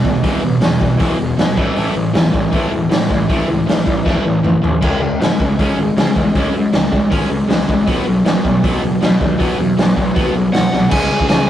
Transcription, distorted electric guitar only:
0.04 0.21 E2 medium
0.04 0.21 B2 medium
0.23 0.41 E2 medium
0.23 0.41 B2 medium
0.23 0.42 E3 medium
0.42 0.60 E2 medium
0.42 0.60 B2 medium
0.61 0.78 E2 medium
0.61 0.78 B2 medium
0.80 0.97 E2 medium
0.80 0.97 B2 medium
0.99 1.16 E2 medium
0.99 1.17 B2 medium
0.99 1.18 E3 medium
1.18 1.36 E2 medium
1.18 1.36 B2 medium
1.37 1.55 E2 medium
1.37 1.55 B2 medium
1.56 1.75 A2 loud
1.56 1.75 E3 loud
1.56 1.75 A3 loud
1.76 1.93 A2 medium
1.76 1.93 E3 medium
1.76 1.95 A3 medium
1.94 2.12 A2 medium
1.94 2.12 E3 medium
2.14 2.30 A2 medium
2.14 2.31 E3 loud
2.31 2.50 A2 medium
2.31 2.50 E3 medium
2.51 2.70 A2 medium
2.51 2.71 E3 loud
2.51 2.71 A3 loud
2.71 2.88 A2 medium
2.71 2.89 E3 medium
2.89 3.08 A2 medium
2.89 3.08 E3 medium
3.09 3.27 A2 medium
3.09 3.27 E3 medium
3.29 3.47 A2 medium
3.29 3.46 E3 medium
3.29 3.48 A3 medium
3.48 3.65 A2 medium
3.48 3.65 E3 medium
3.66 3.84 A2 medium
3.66 3.84 E3 medium
3.86 4.03 A2 medium
3.86 4.04 E3 medium
4.05 4.22 A2 medium
4.05 4.23 E3 medium
4.05 4.24 A3 loud
4.24 4.41 A2 medium
4.24 4.42 E3 medium
4.43 4.61 A2 medium
4.43 4.61 E3 medium
4.62 4.80 A2 medium
4.62 4.80 E3 medium
4.81 5.00 C#3 medium
4.81 5.00 G#3 medium
4.81 5.00 C#4 medium
5.01 5.18 C#3 medium
5.01 5.18 G#3 medium
5.20 5.37 C#3 medium
5.20 5.38 G#3 medium
5.39 5.57 C#3 medium
5.39 5.57 G#3 medium
5.59 5.77 C#3 medium
5.59 5.77 G#3 loud
5.59 5.77 C#4 loud
5.78 5.95 C#3 medium
5.78 5.95 G#3 medium
5.97 6.14 C#3 medium
5.97 6.14 G#3 medium
6.16 6.33 C#3 medium
6.16 6.33 G#3 medium
6.35 6.53 C#3 medium
6.35 6.53 G#3 medium
6.35 6.54 C#4 medium
6.54 6.71 C#3 medium
6.54 6.72 G#3 medium
6.73 6.90 C#3 medium
6.73 6.91 G#3 loud
6.92 7.09 C#3 medium
6.92 7.09 G#3 medium
7.11 7.29 C#3 medium
7.11 7.29 G#3 medium
7.11 7.29 C#4 loud
7.30 7.47 C#3 medium
7.30 7.48 G#3 medium
7.48 7.66 C#3 medium
7.48 7.66 G#3 medium
7.68 7.86 C#3 medium
7.68 7.86 G#3 medium
7.87 8.04 B2 medium
7.87 8.04 F#3 medium
7.87 8.06 B3 medium
8.05 8.23 B2 medium
8.05 8.23 F#3 medium
8.25 8.42 B2 medium
8.25 8.43 F#3 medium
8.44 8.62 B2 medium
8.44 8.62 F#3 medium
8.63 8.81 B2 loud
8.63 8.81 F#3 loud
8.63 8.82 B3 loud
8.82 9.00 B2 medium
8.82 9.00 F#3 medium
9.01 9.18 B2 medium
9.01 9.19 F#3 loud
9.20 9.37 B2 medium
9.20 9.38 F#3 medium
9.38 9.57 B2 medium
9.38 9.57 F#3 medium
9.38 9.57 B3 medium
9.59 9.76 B2 medium
9.59 9.76 F#3 medium
9.77 9.95 B2 medium
9.77 9.95 F#3 medium
9.97 10.13 B2 medium
9.97 10.14 F#3 medium
10.15 10.32 B2 medium
10.15 10.33 F#3 medium
10.15 10.34 B3 loud
10.33 10.51 B2 medium
10.33 10.51 F#3 medium
10.53 10.70 B2 medium
10.53 10.70 F#3 medium
10.71 10.89 B2 medium
10.71 10.89 F#3 medium
10.89 11.46 C#3 medium
10.89 11.47 G#3 medium
10.89 11.46 C#4 medium

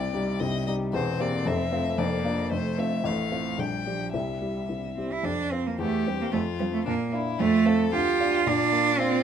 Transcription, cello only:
0.00 0.13 G3 medium
0.14 0.95 G3 medium
0.93 1.98 C4 medium
1.98 2.52 A#3 medium
2.51 3.03 A3 medium
3.04 3.59 A3 medium
3.57 3.88 G3 medium
3.86 4.13 F3 medium
4.13 4.96 G3 medium
4.97 5.14 C4 medium
5.12 5.26 E4 medium
5.25 5.53 D4 medium
5.51 5.68 C4 medium
5.67 5.80 A#3 medium
5.81 6.09 A3 medium
6.08 6.20 G3 medium
6.21 6.26 A#3 medium
6.32 6.40 A3 medium
6.59 6.64 G3 medium
6.73 6.85 A3 medium
6.86 7.12 A#3 medium
7.39 7.89 A3 loud
7.93 8.49 F4 loud
8.48 9.00 D4 loud
8.99 9.23 C4 loud

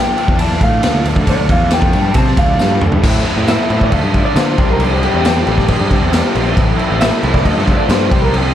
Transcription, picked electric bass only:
0.28 0.59 E2 medium
0.61 0.82 A2 medium
0.83 0.93 D2 medium
0.94 1.04 D2 medium
1.05 1.15 D2 medium
1.16 1.27 D2 loud
1.27 1.38 D2 medium
1.39 1.49 D2 medium
1.49 1.80 E2 loud
1.82 1.93 F2 medium
1.94 2.14 G2 medium
2.15 2.36 C3 loud
2.37 2.58 D2 medium
2.60 2.81 G2 medium
2.82 2.92 D2 medium
2.93 3.03 G2 medium
3.03 3.23 A2 loud
3.37 3.56 A2 medium
3.70 3.89 A2 medium
3.92 4.02 D2 loud
4.03 4.22 G2 medium
4.36 4.55 D3 loud
4.58 5.06 C2 loud
5.14 5.43 E2 medium
5.47 5.75 A1 medium
5.80 5.99 G2 medium
6.02 6.21 E2 medium
6.35 6.54 A#1 medium
6.57 6.76 A1 loud
6.90 7.09 A1 medium
7.23 7.42 C2 medium
7.45 7.55 D2 loud
7.56 7.75 G2 medium
7.89 8.08 G2 loud
8.11 8.54 C2 loud

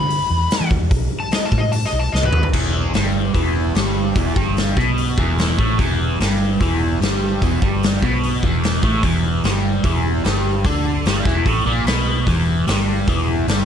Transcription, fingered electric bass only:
0.00 0.21 D3 medium
0.30 0.46 E2 medium
0.61 0.73 E3 medium
0.71 0.79 E2 loud
0.82 0.89 E2 medium
0.91 1.07 B1 loud
1.52 1.83 A2 medium
1.93 2.08 B1 loud
2.13 2.31 C2 medium
2.33 2.51 D#2 medium
2.54 2.91 E1 medium
2.94 3.32 G1 medium
3.34 3.72 E1 medium
3.76 4.13 G1 medium
4.16 4.35 E1 medium
4.36 4.74 G1 medium
4.77 5.15 B1 medium
5.18 5.55 E1 medium
5.59 5.78 A1 medium
5.79 6.17 E1 medium
6.20 6.58 G1 medium
6.61 6.98 E1 medium
7.01 7.38 G1 medium
7.42 7.60 E1 medium
7.62 7.99 G1 medium
8.02 8.40 B1 medium
8.43 8.80 E1 medium
8.83 9.02 A1 medium
9.03 9.41 E1 medium
9.44 9.81 G1 medium
9.84 10.21 E1 medium
10.25 10.62 G1 medium
10.65 11.03 D2 medium
11.06 11.24 G1 medium
11.25 11.44 E1 medium
11.46 11.64 A1 medium
11.65 11.84 A#1 loud
11.84 12.23 B1 medium
12.27 12.64 E1 medium
12.68 13.05 G1 medium
13.08 13.45 E1 medium
13.48 13.65 G1 medium

